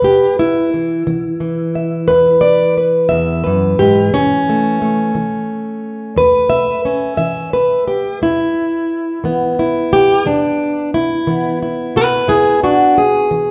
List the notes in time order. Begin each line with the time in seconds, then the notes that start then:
Already playing: B4
0.02 E2 G4
0.39 E4
0.74 E3
1.07 E3
1.40 E3
1.75 E5
2.08 E2 B4
2.41 D5
2.78 B4
3.09 E2 E5
3.44 F#2 B4
3.79 G#2 G4
4.14 E2 C#4
4.49 A3
4.82 A3
5.15 E3
6.16 E2 B4
6.50 E5
6.85 C#4
7.17 E3 E5
7.53 B4
7.88 G4
8.22 E2 E4
9.24 E3 B3
9.59 E4
9.93 G4
10.26 E2 D4
10.94 E4
11.27 E3 B3
11.62 E4
11.96 G#4 B4
12.28 E2 E4 G#4
12.63 D4 F#4
12.98 G#4
13.31 E3